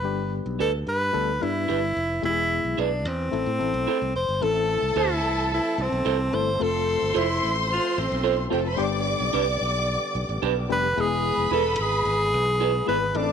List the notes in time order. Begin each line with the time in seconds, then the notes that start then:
Already playing: B4
0.03 G1 G3 B3 D4 G4
0.46 B1
0.59 D2 D4 G4 A4 B4
0.87 G2 B4
1.13 D2 G3 B3 D4 A4
1.40 G2 G3 B3 D4 E4
1.68 G1 D4 G4 B4
1.96 F1
2.22 E1 G#3 B3 E4 G4
2.30 G#4
2.65 B1
2.78 B1 D4 E4 G#4 B4
3.05 E2 C4
3.31 A1 A3 C4 E4 A4
3.46 A2
3.59 A1 A3 C4 E4 A4
3.74 B1
3.88 E4 A4 C5
4.02 C2
4.16 F1 C5
4.29 G1
4.41 A1 E3 A3 C4 E4 A4 A5
4.82 C2
4.96 D2 E4 A4 C5
5.24 C2
5.54 E4
5.78 C2 C4
5.92 B1
6.05 C2 E4 A4 C5
6.33 G1 A3 C4 E4 A4 C5
6.59 F1 F3 A3 C4 F4 A4 C5 C6
7.02 G1
7.14 F1 E4 F4 A4 C5
7.43 A1
7.72 F4
7.98 A1 C4
8.12 B1
8.24 F4 A4 C5
8.50 F1 A3 C4 F4 G4 A4 C5 G5
8.59 A4 A5
8.66 B4 B5
8.72 G3 C5 C6
8.77 G1 D3 G3 B3 D4 G4 D5 D6
9.20 B1
9.33 C2 D4 G4 B4
9.61 B1
10.15 B1
10.29 A1
10.42 B1 D4 G4 B4
10.69 F1 G3 B3 D4 G4 B4
10.96 E1 E3 G#3 B3 E4 G#4 B4 B5
11.00 G#4
11.37 F1
11.51 E1 E4 G#4 A4 B4
11.79 G#1 G#4
12.05 G#1
12.34 B1
12.60 E4 G#4 B4
12.86 G#1 G#3 B3 E4 G#4 B4
13.14 A1 A3 C4 D4 E4 A4 D5 D6